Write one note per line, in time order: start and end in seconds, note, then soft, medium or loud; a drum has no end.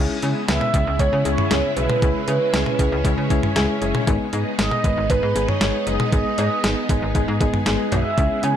0.00 4.04 C#3 medium
0.00 0.17 G#3 loud
0.00 4.04 G#3 medium
0.00 2.01 B3 medium
0.00 0.17 C#4 loud
0.00 0.17 E4 loud
0.00 4.04 E4 medium
0.00 0.17 G#4 loud
0.22 0.34 C#3 loud
0.22 0.43 G#3 medium
0.22 0.43 C#4 medium
0.22 0.43 E4 medium
0.22 0.43 G#4 loud
0.22 closed hi-hat medium
0.48 0.59 C#2 loud
0.48 0.68 G#3 medium
0.48 0.68 C#4 medium
0.48 0.68 E4 medium
0.48 0.68 B4 medium
0.48 1.01 E5 loud
0.48 snare loud
0.48 closed hi-hat medium
0.61 mid tom medium
0.74 0.85 C#2 loud
0.74 0.94 G#3 medium
0.74 0.94 C#4 medium
0.74 0.94 E4 medium
0.74 0.94 G#4 medium
0.74 kick medium
0.74 closed hi-hat medium
0.87 0.98 C#2 loud
0.99 1.11 C#2 loud
0.99 1.20 G#3 medium
0.99 1.20 C#4 medium
0.99 1.20 E4 medium
0.99 1.20 G#4 medium
0.99 1.24 C#5 loud
0.99 kick medium
0.99 closed hi-hat medium
1.13 1.24 C#3 loud
1.25 1.36 C#2 loud
1.25 1.45 G#3 medium
1.25 1.45 C#4 medium
1.25 1.45 E4 medium
1.25 1.45 G#4 loud
1.25 1.73 C#5 loud
1.25 closed hi-hat medium
1.38 mid tom loud
1.51 1.62 C#2 loud
1.51 1.71 G#3 medium
1.51 1.71 C#4 medium
1.51 1.71 E4 medium
1.51 1.71 G#4 loud
1.51 snare loud
1.51 closed hi-hat medium
1.76 1.88 B1 medium
1.76 1.97 G#3 medium
1.76 1.97 C#4 medium
1.76 1.97 E4 medium
1.76 1.97 G#4 medium
1.76 3.78 B4 medium
1.76 closed hi-hat medium
1.90 mid tom loud
2.02 2.13 C#2 loud
2.02 2.22 G#3 loud
2.02 2.22 C#4 medium
2.02 4.06 C#4 medium
2.02 2.22 E4 medium
2.02 2.22 G#4 loud
2.02 kick loud
2.02 closed hi-hat medium
2.28 2.39 C#3 loud
2.28 2.48 G#3 medium
2.28 2.48 C#4 medium
2.28 2.48 E4 medium
2.28 2.48 G#4 medium
2.28 closed hi-hat medium
2.53 2.65 C#2 loud
2.53 2.73 G#3 medium
2.53 2.73 C#4 medium
2.53 2.73 E4 medium
2.53 2.73 G#4 loud
2.53 snare loud
2.53 closed hi-hat medium
2.66 mid tom medium
2.79 2.90 C#2 loud
2.79 2.99 G#3 medium
2.79 2.99 C#4 medium
2.79 2.99 E4 medium
2.79 2.99 G#4 loud
2.79 kick loud
2.79 closed hi-hat medium
2.92 3.03 C#2 loud
3.05 3.16 C#2 loud
3.05 3.25 G#3 medium
3.05 3.25 C#4 medium
3.05 3.25 E4 medium
3.05 3.25 G#4 loud
3.05 kick medium
3.05 closed hi-hat medium
3.18 3.29 C#3 medium
3.30 3.41 C#2 loud
3.30 3.50 G#3 loud
3.30 3.50 C#4 loud
3.30 3.50 E4 loud
3.30 3.50 G#4 loud
3.30 kick medium
3.30 closed hi-hat medium
3.43 mid tom loud
3.56 3.67 C#2 loud
3.56 3.76 G#3 loud
3.56 3.76 C#4 loud
3.56 3.76 E4 loud
3.56 3.76 G#4 loud
3.56 snare loud
3.56 closed hi-hat medium
3.82 3.93 F#1 medium
3.82 4.02 G#3 medium
3.82 4.02 C#4 medium
3.82 4.02 E4 medium
3.82 4.02 G#4 loud
3.82 closed hi-hat medium
3.95 mid tom loud
4.07 4.18 G#1 loud
4.07 4.27 G#3 loud
4.07 8.57 G#3 medium
4.07 4.27 B3 loud
4.07 8.14 B3 medium
4.07 4.27 D#4 loud
4.07 8.14 D#4 medium
4.07 4.27 G#4 loud
4.07 kick loud
4.07 closed hi-hat medium
4.33 4.44 G#2 loud
4.33 4.53 G#3 medium
4.33 4.53 B3 medium
4.33 4.53 D#4 medium
4.33 4.53 G#4 loud
4.33 closed hi-hat medium
4.58 4.70 G#1 loud
4.58 4.79 G#3 medium
4.58 4.79 B3 medium
4.58 4.78 D#4 medium
4.58 4.78 G#4 medium
4.58 5.12 D#5 loud
4.58 snare loud
4.58 closed hi-hat medium
4.71 mid tom medium
4.84 4.95 G#1 loud
4.84 5.04 G#3 medium
4.84 5.04 B3 medium
4.84 5.04 D#4 medium
4.84 5.04 B4 medium
4.84 kick loud
4.84 closed hi-hat medium
4.97 5.08 G#1 loud
5.10 5.21 G#1 loud
5.10 5.30 G#3 medium
5.10 5.30 B3 medium
5.10 5.30 D#4 medium
5.10 5.30 G#4 medium
5.10 5.50 B4 loud
5.10 kick medium
5.10 closed hi-hat medium
5.23 5.34 G#2 loud
5.35 5.47 G#1 loud
5.35 5.55 G#3 loud
5.35 5.55 B3 medium
5.35 5.55 D#4 medium
5.35 5.56 G#4 loud
5.35 closed hi-hat medium
5.49 5.88 C#5 loud
5.49 mid tom medium
5.61 5.72 G#1 loud
5.61 5.81 G#3 loud
5.61 5.81 B3 medium
5.61 5.81 D#4 medium
5.61 5.81 G#4 loud
5.61 snare loud
5.61 closed hi-hat medium
5.87 5.98 F#1 medium
5.87 6.07 G#3 medium
5.87 6.07 B3 medium
5.87 6.07 D#4 medium
5.87 6.07 G#4 medium
5.87 6.12 D#5 loud
5.87 closed hi-hat medium
6.00 mid tom loud
6.12 6.24 G#1 loud
6.12 6.32 G#3 loud
6.12 6.32 B3 medium
6.12 6.32 D#4 medium
6.12 6.32 G#4 loud
6.12 7.11 D#5 loud
6.12 kick loud
6.12 closed hi-hat medium
6.38 6.49 G#2 loud
6.38 6.58 G#3 medium
6.38 6.58 B3 medium
6.38 6.58 D#4 medium
6.38 6.58 G#4 medium
6.38 closed hi-hat medium
6.38 cowbell medium
6.64 6.75 G#1 medium
6.64 6.84 G#3 medium
6.64 6.84 B3 medium
6.64 6.84 D#4 medium
6.64 6.84 G#4 medium
6.64 snare loud
6.64 closed hi-hat medium
6.89 7.00 G#1 loud
6.89 7.09 G#3 medium
6.89 7.09 B3 medium
6.89 7.09 D#4 medium
6.89 7.09 G#4 medium
6.89 kick loud
6.89 closed hi-hat medium
7.02 7.13 G#1 loud
7.15 7.26 G#1 loud
7.15 7.35 G#3 medium
7.15 7.35 B3 medium
7.15 7.35 D#4 medium
7.15 7.35 G#4 loud
7.15 kick medium
7.15 closed hi-hat medium
7.28 7.39 G#2 loud
7.41 7.52 G#1 loud
7.41 7.61 G#3 loud
7.41 7.61 B3 loud
7.41 7.61 D#4 loud
7.41 7.61 G#4 loud
7.41 kick loud
7.41 closed hi-hat medium
7.54 mid tom loud
7.66 7.77 G#1 loud
7.66 7.86 G#3 loud
7.66 7.86 B3 loud
7.66 7.86 D#4 loud
7.66 7.86 G#4 loud
7.66 snare loud
7.66 closed hi-hat medium
7.92 8.03 B1 loud
7.92 8.12 G#3 medium
7.92 8.12 B3 medium
7.92 8.12 D#4 medium
7.92 8.12 F#4 medium
7.92 8.45 E5 loud
7.92 closed hi-hat medium
7.92 mid tom medium
7.92 cowbell medium
8.17 8.29 C#2 loud
8.17 8.57 C#3 medium
8.17 8.37 G#3 loud
8.17 8.57 B3 medium
8.17 8.37 C#4 medium
8.17 8.37 E4 medium
8.17 8.57 E4 medium
8.17 8.37 G#4 loud
8.17 kick loud
8.17 closed hi-hat medium
8.43 8.54 C#3 loud
8.43 8.57 G#3 medium
8.43 8.57 C#4 medium
8.43 8.57 E4 medium
8.43 8.57 G#4 medium
8.43 8.57 G#5 loud
8.43 closed hi-hat medium